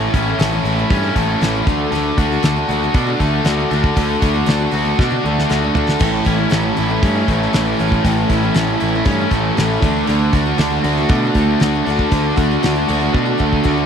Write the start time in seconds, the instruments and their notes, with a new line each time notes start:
Already playing: steel-string acoustic guitar A2 E3 A3 C#4 A4, overdriven electric guitar A2 C#4 E4 A4, distorted electric guitar E3 A3 C#4
0.13 picked electric bass A1, steel-string acoustic guitar E3 A3 C#4 A4, overdriven electric guitar C#4, distorted electric guitar E4, kick, open hi-hat
0.28 steel-string acoustic guitar A3 C#4 A4
0.38 picked electric bass A1, steel-string acoustic guitar A2 E3 A3 C#4 A4, overdriven electric guitar A4, snare, open hi-hat
0.52 steel-string acoustic guitar A3 C#4 A4
0.63 picked electric bass A1, steel-string acoustic guitar E3 A3 C#4, overdriven electric guitar E4, open hi-hat
0.67 steel-string acoustic guitar A4
0.79 steel-string acoustic guitar A3 C#4 A4
0.90 picked electric bass G2, overdriven electric guitar C#4, kick, open hi-hat
1.03 steel-string acoustic guitar A3 C#4 A4
1.16 picked electric bass A1, steel-string acoustic guitar E3 A3 C#4 A4, overdriven electric guitar A4, kick, open hi-hat
1.41 picked electric bass A1, steel-string acoustic guitar A2 E3 A3 C#4 A4, overdriven electric guitar E4, snare, open hi-hat
1.56 steel-string acoustic guitar A3 C#4 A4
1.66 picked electric bass D2, overdriven electric guitar D3, steel-string acoustic guitar D3 A3 D4 F#4, kick, open hi-hat
1.92 picked electric bass D2, overdriven electric guitar D3, steel-string acoustic guitar D3 A3, open hi-hat
1.96 steel-string acoustic guitar D4 F#4
2.17 picked electric bass D2, steel-string acoustic guitar D3 A3 D4 F#4, overdriven electric guitar D4, kick, open hi-hat
2.32 steel-string acoustic guitar A3 D4 F#4
2.43 picked electric bass D2, steel-string acoustic guitar D3 A3 D4 F#4, overdriven electric guitar A4, snare, open hi-hat
2.56 steel-string acoustic guitar A3 D4 F#4
2.68 picked electric bass D2, steel-string acoustic guitar D3 A3, overdriven electric guitar F#4, open hi-hat
2.72 steel-string acoustic guitar D4 F#4
2.83 steel-string acoustic guitar A3 D4 F#4
2.94 picked electric bass B2, overdriven electric guitar D4, kick, open hi-hat
3.07 steel-string acoustic guitar A3 D4 F#4
3.20 picked electric bass D2, steel-string acoustic guitar D3 A3 D4 F#4, overdriven electric guitar A4, kick, open hi-hat
3.44 picked electric bass D2, steel-string acoustic guitar D3 A3 D4 F#4, overdriven electric guitar F#4, snare, open hi-hat
3.59 steel-string acoustic guitar A3 D4 F#4
3.71 picked electric bass D2, steel-string acoustic guitar D3 A3 D4 F#4, overdriven electric guitar A4, open hi-hat
3.84 kick
3.96 picked electric bass D2, steel-string acoustic guitar D3 A3 D4 F#4, overdriven electric guitar D3, kick, open hi-hat
4.22 picked electric bass D2, steel-string acoustic guitar D3 A3 D4 F#4, overdriven electric guitar D4, kick, open hi-hat
4.34 steel-string acoustic guitar A3 D4 F#4
4.46 picked electric bass D2, steel-string acoustic guitar D3 A3 D4 F#4, overdriven electric guitar A4, snare, open hi-hat
4.60 steel-string acoustic guitar A3 D4 F#4
4.71 picked electric bass D2, steel-string acoustic guitar D3 A3 D4 F#4, overdriven electric guitar F#4, open hi-hat
4.85 steel-string acoustic guitar A3 D4 F#4
4.99 picked electric bass B2, overdriven electric guitar D4, kick, snare
5.10 steel-string acoustic guitar A3 D4 F#4, high tom
5.25 picked electric bass D2, steel-string acoustic guitar D3 A3 D4 F#4, overdriven electric guitar A4
5.39 snare
5.49 picked electric bass D2, steel-string acoustic guitar D3 A3 D4 F#4, overdriven electric guitar F#4, snare
5.62 steel-string acoustic guitar A3 D4 F#4
5.75 picked electric bass D2, steel-string acoustic guitar D3 A3 D4 F#4, overdriven electric guitar A4, floor tom
5.89 snare
6.00 picked electric bass A1, steel-string acoustic guitar A2 E3 A3 C#4 E4, overdriven electric guitar A2, kick, open hi-hat, crash
6.25 picked electric bass A1, steel-string acoustic guitar E3 A3 C#4 E4, overdriven electric guitar C#4, kick, open hi-hat
6.37 steel-string acoustic guitar A3 C#4 E4
6.50 picked electric bass A1, steel-string acoustic guitar A2 E3 A3 C#4 E4, overdriven electric guitar A4, snare, open hi-hat
6.63 steel-string acoustic guitar A3 C#4 E4
6.76 picked electric bass A1, steel-string acoustic guitar E3 A3 C#4 E4, overdriven electric guitar E4, open hi-hat
6.88 steel-string acoustic guitar A3 C#4 E4
7.02 picked electric bass G2, overdriven electric guitar A2 E3 A3 C#4, kick, open hi-hat
7.16 steel-string acoustic guitar A3 C#4 E4
7.28 picked electric bass A1, steel-string acoustic guitar E3 A3 C#4 E4, overdriven electric guitar A4, kick, open hi-hat
7.42 snare
7.53 picked electric bass A1, steel-string acoustic guitar A2 E3 A3 C#4 E4, overdriven electric guitar E4, snare, open hi-hat
7.79 picked electric bass A1, steel-string acoustic guitar E3 A3 C#4 E4, overdriven electric guitar A4, open hi-hat
7.92 kick
8.04 picked electric bass A1, overdriven electric guitar A2, steel-string acoustic guitar A2 E3 A3 C#4 E4, kick, open hi-hat
8.29 picked electric bass A1, steel-string acoustic guitar E3 A3, overdriven electric guitar C#4, distorted electric guitar E4, kick, open hi-hat
8.33 steel-string acoustic guitar C#4 E4
8.43 steel-string acoustic guitar A3 C#4 E4
8.55 picked electric bass A1, steel-string acoustic guitar A2 E3 A3 C#4 E4, overdriven electric guitar A4, snare, open hi-hat
8.69 steel-string acoustic guitar A3 C#4 E4
8.80 picked electric bass A1, steel-string acoustic guitar E3 A3 C#4 E4, overdriven electric guitar E4, open hi-hat
8.95 steel-string acoustic guitar A3 C#4 E4
9.05 picked electric bass G2, overdriven electric guitar A2 E3 A3 C#4, kick, open hi-hat
9.19 steel-string acoustic guitar A3 C#4 E4
9.29 picked electric bass A1, steel-string acoustic guitar E3, distorted electric guitar A3, overdriven electric guitar A4, kick, open hi-hat
9.34 steel-string acoustic guitar A3 C#4 E4
9.55 picked electric bass A1, steel-string acoustic guitar A2, distorted electric guitar E3, overdriven electric guitar E4, snare, open hi-hat
9.60 steel-string acoustic guitar E3 A3 C#4 E4
9.82 picked electric bass D2, overdriven electric guitar D3, steel-string acoustic guitar D3 A3 D4 F#4, kick, open hi-hat
10.06 picked electric bass D2, overdriven electric guitar D3, steel-string acoustic guitar D3 A3 D4 F#4, open hi-hat
10.32 picked electric bass D2, steel-string acoustic guitar D3 A3 D4, overdriven electric guitar D4, distorted electric guitar F#4, kick, open hi-hat
10.37 steel-string acoustic guitar F#4
10.46 steel-string acoustic guitar A3 D4 F#4
10.58 picked electric bass D2, steel-string acoustic guitar D3 A3 D4 F#4, overdriven electric guitar A4, snare, open hi-hat
10.71 steel-string acoustic guitar A3 D4 F#4
10.83 picked electric bass D2, steel-string acoustic guitar D3 A3 D4 F#4, overdriven electric guitar F#4, open hi-hat
10.98 steel-string acoustic guitar A3 D4 F#4
11.09 picked electric bass B2, overdriven electric guitar D4, kick, open hi-hat
11.24 steel-string acoustic guitar A3 D4 F#4
11.35 picked electric bass D2, steel-string acoustic guitar D3 A3 D4 F#4, overdriven electric guitar A4, kick, open hi-hat
11.60 picked electric bass D2, steel-string acoustic guitar D3 A3 D4, overdriven electric guitar F#4, snare, open hi-hat
11.64 steel-string acoustic guitar F#4
11.75 steel-string acoustic guitar A3 D4 F#4
11.85 picked electric bass D2, steel-string acoustic guitar D3 A3, distorted electric guitar D4, overdriven electric guitar A4, open hi-hat
11.90 steel-string acoustic guitar D4 F#4
11.99 kick
12.11 picked electric bass D2, overdriven electric guitar D3, steel-string acoustic guitar D3 A3 D4 F#4, kick, open hi-hat
12.36 picked electric bass D2, steel-string acoustic guitar D3 A3 D4 F#4, overdriven electric guitar D4, kick, open hi-hat
12.52 steel-string acoustic guitar A3 D4 F#4
12.62 picked electric bass D2, steel-string acoustic guitar D3 A3 D4 F#4, overdriven electric guitar A4, snare, open hi-hat
12.76 steel-string acoustic guitar A3 D4 F#4
12.88 picked electric bass D2, steel-string acoustic guitar D3 A3 D4 F#4, overdriven electric guitar F#4, open hi-hat
13.01 steel-string acoustic guitar A3 D4 F#4
13.14 picked electric bass B2, overdriven electric guitar D4, kick
13.26 steel-string acoustic guitar A3 D4 F#4
13.38 picked electric bass D2, steel-string acoustic guitar D3 A3 D4 F#4, overdriven electric guitar A4, kick
13.53 kick
13.63 picked electric bass D2, steel-string acoustic guitar D3 A3 D4 F#4, overdriven electric guitar F#4, kick
13.77 steel-string acoustic guitar A3 D4 F#4